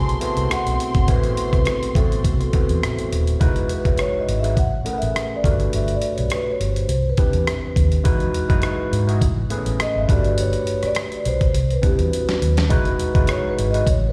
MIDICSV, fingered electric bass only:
0, 0, Header, 1, 3, 480
1, 0, Start_track
1, 0, Tempo, 581395
1, 893, Time_signature, 4, 2, 24, 8
1, 11662, End_track
2, 0, Start_track
2, 0, Title_t, "Fingered electric bass"
2, 0, Program_c, 0, 33
2, 0, Note_on_c, 0, 36, 78
2, 122, Note_off_c, 0, 36, 0
2, 307, Note_on_c, 0, 36, 88
2, 391, Note_off_c, 0, 36, 0
2, 550, Note_on_c, 0, 35, 79
2, 632, Note_off_c, 0, 35, 0
2, 786, Note_on_c, 0, 32, 83
2, 897, Note_off_c, 0, 32, 0
2, 897, Note_on_c, 0, 33, 97
2, 1080, Note_off_c, 0, 33, 0
2, 1266, Note_on_c, 0, 36, 78
2, 1349, Note_off_c, 0, 36, 0
2, 1611, Note_on_c, 0, 33, 81
2, 1797, Note_off_c, 0, 33, 0
2, 1855, Note_on_c, 0, 36, 80
2, 2039, Note_off_c, 0, 36, 0
2, 2225, Note_on_c, 0, 40, 88
2, 2308, Note_off_c, 0, 40, 0
2, 2342, Note_on_c, 0, 33, 85
2, 2438, Note_off_c, 0, 33, 0
2, 2580, Note_on_c, 0, 27, 77
2, 2761, Note_off_c, 0, 27, 0
2, 2816, Note_on_c, 0, 28, 94
2, 2999, Note_off_c, 0, 28, 0
2, 3181, Note_on_c, 0, 30, 72
2, 3266, Note_off_c, 0, 30, 0
2, 3539, Note_on_c, 0, 32, 84
2, 3775, Note_off_c, 0, 32, 0
2, 3775, Note_on_c, 0, 33, 84
2, 3958, Note_off_c, 0, 33, 0
2, 4150, Note_on_c, 0, 33, 83
2, 4231, Note_off_c, 0, 33, 0
2, 4492, Note_on_c, 0, 31, 83
2, 4676, Note_off_c, 0, 31, 0
2, 4741, Note_on_c, 0, 31, 87
2, 4922, Note_off_c, 0, 31, 0
2, 5108, Note_on_c, 0, 35, 84
2, 5190, Note_off_c, 0, 35, 0
2, 5453, Note_on_c, 0, 31, 75
2, 5637, Note_off_c, 0, 31, 0
2, 5687, Note_on_c, 0, 36, 94
2, 5873, Note_off_c, 0, 36, 0
2, 6057, Note_on_c, 0, 40, 77
2, 6143, Note_off_c, 0, 40, 0
2, 6411, Note_on_c, 0, 39, 78
2, 6595, Note_off_c, 0, 39, 0
2, 6650, Note_on_c, 0, 40, 89
2, 6835, Note_off_c, 0, 40, 0
2, 7020, Note_on_c, 0, 42, 80
2, 7105, Note_off_c, 0, 42, 0
2, 7368, Note_on_c, 0, 44, 80
2, 7611, Note_on_c, 0, 33, 96
2, 7623, Note_off_c, 0, 44, 0
2, 7795, Note_off_c, 0, 33, 0
2, 7978, Note_on_c, 0, 33, 79
2, 8064, Note_off_c, 0, 33, 0
2, 8220, Note_on_c, 0, 32, 80
2, 8305, Note_off_c, 0, 32, 0
2, 8331, Note_on_c, 0, 31, 89
2, 8700, Note_off_c, 0, 31, 0
2, 9295, Note_on_c, 0, 35, 76
2, 9478, Note_off_c, 0, 35, 0
2, 9535, Note_on_c, 0, 36, 91
2, 9718, Note_off_c, 0, 36, 0
2, 9899, Note_on_c, 0, 40, 83
2, 9984, Note_off_c, 0, 40, 0
2, 10252, Note_on_c, 0, 39, 82
2, 10492, Note_on_c, 0, 28, 88
2, 10504, Note_off_c, 0, 39, 0
2, 10675, Note_off_c, 0, 28, 0
2, 10859, Note_on_c, 0, 30, 80
2, 10944, Note_off_c, 0, 30, 0
2, 11219, Note_on_c, 0, 32, 71
2, 11400, Note_off_c, 0, 32, 0
2, 11450, Note_on_c, 0, 33, 92
2, 11634, Note_off_c, 0, 33, 0
2, 11662, End_track
3, 0, Start_track
3, 0, Title_t, "Muted fingered electric bass strokes"
3, 2094, Note_on_c, 9, 29, 43
3, 2176, Note_off_c, 9, 29, 0
3, 8087, Note_on_c, 9, 29, 39
3, 8170, Note_off_c, 9, 29, 0
3, 8944, Note_on_c, 9, 29, 43
3, 9027, Note_off_c, 9, 29, 0
3, 11662, End_track
0, 0, End_of_file